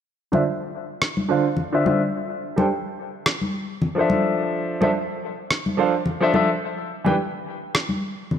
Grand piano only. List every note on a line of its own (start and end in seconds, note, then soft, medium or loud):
0.32 0.39 D3 medium
0.32 0.40 D4 medium
0.32 0.40 F4 medium
0.32 0.40 C5 medium
0.32 0.41 E5 medium
1.29 1.43 D3 medium
1.29 1.43 D4 medium
1.29 1.43 F4 medium
1.29 1.44 C5 medium
1.29 1.44 F5 medium
1.72 1.82 D3 medium
1.72 1.83 D4 medium
1.72 1.83 F4 medium
1.72 1.83 C5 medium
1.72 1.84 E5 loud
1.85 1.99 D3 medium
1.85 1.99 D4 medium
1.85 2.00 F4 medium
1.85 2.00 C5 medium
1.85 2.00 E5 medium
2.56 2.64 G3 medium
2.56 2.64 D4 medium
2.56 2.65 A4 medium
2.56 2.65 C5 medium
2.56 2.65 G5 medium
3.95 4.77 F3 medium
3.95 4.77 D4 medium
3.95 4.78 A4 medium
3.99 4.79 C5 medium
3.99 4.80 E5 medium
4.81 4.88 F3 medium
4.81 4.89 D4 medium
4.81 4.89 A4 medium
4.81 4.89 C5 medium
4.81 4.89 E5 medium
5.77 5.91 F3 medium
5.77 5.92 D4 medium
5.77 5.92 A4 medium
5.77 5.93 C5 medium
5.77 5.93 F5 medium
6.20 6.31 F3 medium
6.20 6.31 D4 medium
6.20 6.31 A4 medium
6.20 6.32 C5 medium
6.20 6.32 E5 medium
6.33 6.47 F3 medium
6.33 6.48 D4 medium
6.33 6.48 A4 medium
6.33 6.48 C5 medium
6.33 6.49 E5 medium
7.04 7.12 E3 medium
7.04 7.12 D4 medium
7.04 7.13 G4 medium
7.04 7.13 B4 medium
7.04 7.14 G5 medium